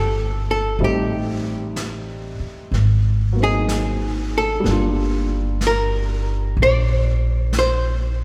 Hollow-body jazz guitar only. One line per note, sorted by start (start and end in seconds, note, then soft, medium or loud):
0.00 0.50 A4 medium
0.51 0.83 A4 medium
0.84 2.38 G4 medium
3.44 4.37 G#4 medium
4.38 5.66 A4 medium
5.67 6.62 A#4 medium
6.63 7.58 D5 medium
7.59 8.24 C5 medium